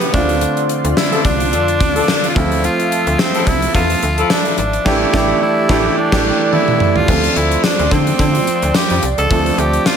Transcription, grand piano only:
0.00 0.16 C3 medium
0.00 0.14 A3 medium
0.00 0.10 G4 medium
0.00 0.10 B4 medium
0.13 2.32 D3 medium
0.13 2.32 A3 medium
0.13 2.32 C4 medium
0.13 2.33 F4 medium
2.35 4.54 F3 medium
2.35 4.54 A3 medium
2.35 4.55 C4 medium
2.35 4.55 F4 medium
4.85 5.05 E3 loud
4.85 5.05 A3 medium
4.85 5.06 D4 medium
4.85 5.06 G4 medium
5.13 5.33 E3 medium
5.13 5.33 A3 loud
5.13 5.34 D4 loud
5.13 5.34 G4 medium
5.68 5.88 E3 loud
5.68 5.89 A3 loud
5.68 5.89 D4 loud
5.68 5.90 G4 loud
6.12 6.31 E3 loud
6.12 6.31 A3 loud
6.12 6.31 D4 medium
6.12 6.31 G4 loud
7.07 9.26 F3 medium
7.07 9.26 A3 medium
7.07 9.27 C4 medium
7.07 9.27 D4 medium
7.07 9.27 A4 medium
9.30 9.97 F3 medium
9.30 9.97 A3 medium
9.30 9.97 C4 medium
9.30 9.97 D4 medium
9.30 9.97 A4 medium

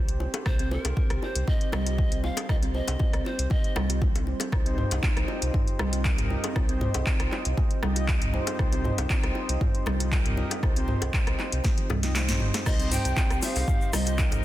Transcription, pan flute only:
0.46 0.74 C5 medium
0.72 1.24 A#4 medium
1.23 1.47 C5 loud
1.48 1.71 D#5 loud
1.73 2.25 D#5 loud
2.24 2.49 F5 loud
2.49 2.55 D#5 loud
2.75 3.27 D#5 loud
3.25 3.52 C5 medium
3.51 4.02 D#5 medium
12.67 12.94 D#5 loud
12.92 13.43 G5 loud
13.43 13.95 F5 loud
13.94 14.45 D#5 loud

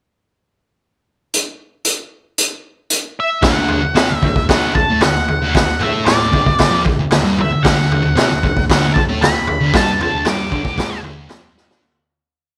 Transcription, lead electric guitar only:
3.20 3.43 E5 medium
3.46 4.16 F#5 medium
4.16 4.46 E5 medium
4.50 4.74 F#5 medium
4.75 5.02 A5 loud
5.03 5.54 F#5 loud
5.55 5.82 F#5 loud
5.83 6.05 E5 medium
6.06 6.81 D5 medium
7.41 7.66 E5 medium
7.63 8.64 F#5 medium
8.72 8.94 F#5 medium
8.94 9.01 A5 medium
9.22 9.75 B5 loud
9.76 9.99 A5 medium
10.03 10.25 A5 medium
10.29 11.00 D6 loud

